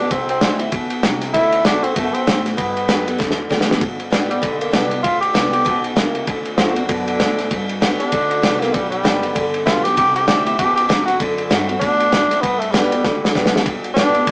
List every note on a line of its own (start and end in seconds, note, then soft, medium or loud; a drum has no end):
0.00 0.11 B3 soft
0.00 0.13 D4 loud
0.11 0.40 C2 medium
0.11 0.70 C3 medium
0.11 0.29 C4 loud
0.11 kick loud
0.11 ride medium
0.29 0.58 C4 medium
0.29 ride medium
0.41 0.71 D2 loud
0.41 0.59 E3 medium
0.41 0.59 G3 medium
0.41 0.59 C4 medium
0.41 0.58 E4 loud
0.41 snare loud
0.41 ride medium
0.59 0.73 C4 soft
0.59 0.71 E4 medium
0.59 ride medium
0.72 1.02 E2 medium
0.72 1.02 B2 loud
0.72 kick loud
0.72 ride medium
0.90 ride medium
1.03 1.33 C2 loud
1.03 1.33 C3 loud
1.03 kick medium
1.03 snare loud
1.03 ride medium
1.21 snare soft
1.21 ride medium
1.33 1.64 D2 medium
1.33 1.63 D3 medium
1.33 1.67 E4 loud
1.33 kick loud
1.33 ride medium
1.52 ride medium
1.64 1.95 E2 loud
1.64 1.82 D3 medium
1.64 1.83 A3 medium
1.64 1.83 C4 medium
1.64 1.85 D4 loud
1.64 1.81 F#4 loud
1.64 snare loud
1.64 ride medium
1.83 1.97 C4 medium
1.83 1.96 C4 medium
1.83 1.95 F#4 medium
1.83 ride medium
1.95 2.13 F#2 medium
1.95 2.25 B2 loud
1.95 2.15 A3 medium
1.95 kick loud
1.95 ride loud
2.14 2.45 C4 loud
2.14 muted upright bass stroke soft
2.14 ride medium
2.27 2.56 A2 medium
2.27 2.57 A2 loud
2.27 kick medium
2.27 snare loud
2.27 ride medium
2.46 snare soft
2.46 ride medium
2.57 3.16 G2 medium
2.57 2.88 G2 medium
2.57 3.15 B3 loud
2.57 kick loud
2.57 ride medium
2.77 ride medium
2.88 3.18 F#2 loud
2.88 3.06 D3 medium
2.88 3.06 G3 medium
2.88 3.06 B3 medium
2.88 3.05 G4 medium
2.88 snare loud
2.88 ride medium
3.06 3.19 B3 soft
3.06 3.18 G4 medium
3.06 ride medium
3.18 3.50 E2 medium
3.18 3.48 D3 loud
3.18 kick loud
3.18 snare medium
3.31 snare medium
3.49 3.80 D2 loud
3.49 3.67 D3 medium
3.49 3.68 G3 medium
3.49 3.68 B3 medium
3.49 3.66 G4 loud
3.49 kick medium
3.49 snare medium
3.61 snare medium
3.67 3.81 B3 medium
3.67 3.80 G4 medium
3.71 snare medium
3.80 4.11 G1 medium
3.80 4.40 G2 medium
3.80 kick loud
3.80 ride medium
4.00 ride medium
4.11 4.42 A1 loud
4.11 4.29 D3 medium
4.11 4.29 G3 medium
4.11 4.30 B3 medium
4.11 4.27 G4 loud
4.11 snare loud
4.11 ride medium
4.28 4.61 G3 medium
4.28 4.42 B3 soft
4.28 4.41 G4 medium
4.28 ride medium
4.42 4.73 B1 medium
4.42 4.70 D3 medium
4.42 kick loud
4.42 ride medium
4.59 4.74 A#3 medium
4.59 ride medium
4.71 5.03 C2 medium
4.71 4.90 D3 medium
4.71 4.90 G3 medium
4.71 4.91 B3 medium
4.71 5.02 D4 medium
4.71 4.88 G4 loud
4.71 kick medium
4.71 snare loud
4.71 ride medium
4.90 5.04 B3 medium
4.90 5.03 G4 medium
4.90 ride medium
5.03 5.34 D2 medium
5.03 5.63 G2 medium
5.03 5.20 F4 loud
5.03 kick loud
5.03 ride medium
5.21 5.52 G4 medium
5.21 ride medium
5.33 5.65 C2 loud
5.33 5.52 D3 medium
5.33 5.52 G3 medium
5.33 5.52 B3 medium
5.33 5.50 G4 medium
5.33 snare loud
5.33 ride medium
5.51 5.65 B3 soft
5.51 5.64 G4 medium
5.51 5.83 G4 loud
5.51 ride medium
5.65 5.96 B1 medium
5.65 5.95 B2 loud
5.65 kick loud
5.65 ride medium
5.84 ride medium
5.96 6.27 C#2 medium
5.96 6.26 C3 medium
5.96 6.26 A#3 medium
5.96 kick medium
5.96 snare loud
5.96 ride medium
6.15 ride medium
6.27 6.58 D2 medium
6.27 6.57 D3 medium
6.27 kick loud
6.27 ride medium
6.45 ride medium
6.57 6.88 E2 loud
6.57 6.76 D3 medium
6.57 6.75 F3 loud
6.57 6.76 A3 loud
6.57 6.77 C4 medium
6.57 6.74 F#4 medium
6.57 snare loud
6.57 ride medium
6.76 6.88 D3 medium
6.76 6.90 C4 medium
6.76 6.88 F#4 medium
6.76 ride medium
6.88 7.19 F#2 loud
6.88 7.19 B2 loud
6.88 7.78 D3 loud
6.88 kick loud
6.88 ride medium
7.08 ride medium
7.20 7.49 A2 medium
7.20 7.50 A2 loud
7.20 kick medium
7.20 snare loud
7.20 ride medium
7.38 snare soft
7.38 ride medium
7.51 8.10 G2 medium
7.51 7.81 G2 medium
7.51 kick loud
7.51 ride medium
7.69 ride medium
7.80 7.98 E2 medium
7.80 7.99 D3 medium
7.80 7.99 G3 medium
7.80 7.99 B3 medium
7.80 7.98 G4 loud
7.80 snare loud
7.80 ride medium
7.99 8.13 B3 soft
7.99 8.62 D4 loud
7.99 8.12 G4 medium
7.99 muted upright bass stroke soft
7.99 ride medium
8.12 8.42 D2 medium
8.12 8.41 D3 loud
8.12 kick loud
8.12 ride medium
8.31 ride medium
8.42 8.73 C2 loud
8.42 8.60 D3 medium
8.42 8.61 G3 medium
8.42 8.61 B3 medium
8.42 8.60 G4 medium
8.42 kick medium
8.42 snare loud
8.42 ride medium
8.60 8.74 A#3 loud
8.60 8.74 B3 soft
8.60 8.73 G4 medium
8.60 snare soft
8.60 ride medium
8.73 9.04 B1 medium
8.73 9.33 G2 medium
8.73 8.90 G3 loud
8.73 kick loud
8.73 ride medium
8.90 9.51 G3 loud
8.90 ride medium
9.03 9.34 F#1 loud
9.03 9.34 D3 medium
9.03 9.34 G3 medium
9.03 9.35 B3 medium
9.03 9.35 G4 loud
9.03 snare loud
9.03 ride medium
9.23 ride medium
9.35 9.66 G1 medium
9.35 9.65 D3 medium
9.35 kick loud
9.35 ride medium
9.54 ride medium
9.66 9.96 B1 medium
9.66 9.83 D3 medium
9.66 9.84 G3 medium
9.66 9.84 B3 medium
9.66 9.85 F4 loud
9.66 9.83 G4 medium
9.66 kick medium
9.66 snare loud
9.66 ride medium
9.84 9.98 B3 medium
9.84 9.96 G4 loud
9.84 9.97 G4 medium
9.84 snare soft
9.84 ride medium
9.97 10.27 C2 medium
9.97 10.56 C3 loud
9.97 10.15 G4 loud
9.97 kick loud
9.97 ride medium
10.16 10.27 G4 loud
10.16 ride medium
10.27 10.58 D2 loud
10.27 10.45 E3 medium
10.27 10.45 G3 loud
10.27 10.46 C4 medium
10.27 10.45 E4 loud
10.27 10.45 G4 loud
10.27 snare loud
10.27 ride medium
10.46 10.59 C4 soft
10.46 10.58 E4 medium
10.46 10.58 G4 medium
10.46 ride medium
10.59 10.89 E2 medium
10.59 10.88 B2 loud
10.59 10.75 G4 loud
10.59 kick loud
10.59 ride medium
10.76 10.87 G4 loud
10.76 ride medium
10.88 11.19 F2 medium
10.88 11.19 C3 loud
10.88 11.05 G4 medium
10.88 kick medium
10.88 snare loud
10.88 ride medium
11.06 11.19 F#4 loud
11.06 snare soft
11.06 ride medium
11.20 11.50 F#2 medium
11.20 11.48 D3 loud
11.20 kick loud
11.20 ride medium
11.38 ride medium
11.50 11.81 G2 loud
11.50 11.68 D3 medium
11.50 11.68 A3 medium
11.50 11.68 C4 medium
11.50 11.67 F#4 loud
11.50 snare loud
11.50 ride medium
11.68 11.82 C4 medium
11.68 11.81 F#4 medium
11.68 ride medium
11.80 12.11 A2 medium
11.80 12.11 B2 medium
11.80 12.42 D4 loud
11.80 kick loud
11.80 ride medium
12.00 ride medium
12.12 12.29 F#2 loud
12.12 12.42 A2 medium
12.12 kick medium
12.12 snare loud
12.12 ride medium
12.30 muted upright bass stroke soft
12.30 snare soft
12.30 ride medium
12.41 13.02 G2 medium
12.41 12.73 G2 medium
12.41 12.60 B3 loud
12.41 kick loud
12.41 ride medium
12.59 12.73 A3 loud
12.59 ride medium
12.72 13.04 E2 loud
12.72 12.90 D3 medium
12.72 13.32 G3 loud
12.72 12.91 G3 medium
12.72 12.91 B3 loud
12.72 12.90 G4 medium
12.72 snare loud
12.72 ride medium
12.91 13.05 B3 medium
12.91 13.04 G4 medium
12.91 ride medium
13.04 13.34 D2 medium
13.04 13.33 D3 loud
13.04 kick loud
13.04 snare medium
13.25 snare medium
13.34 13.65 B1 medium
13.34 13.52 D3 medium
13.34 13.52 G3 medium
13.34 13.53 B3 medium
13.34 13.52 G4 medium
13.34 kick medium
13.34 snare medium
13.46 snare loud
13.53 13.66 B3 soft
13.53 13.65 G4 medium
13.53 snare loud
13.66 13.96 G1 medium
13.66 14.25 G2 medium
13.66 kick loud
13.66 ride medium
13.84 ride medium
13.94 14.27 A1 loud
13.94 14.14 D3 medium
13.94 14.14 G3 medium
13.94 14.15 B3 medium
13.94 14.31 D4 loud
13.94 snare loud
13.94 ride medium
13.98 14.12 G4 medium
14.14 14.28 B3 medium
14.14 14.26 G4 medium
14.14 ride medium
14.27 14.31 B1 medium
14.27 14.31 D3 loud
14.27 kick loud
14.27 ride medium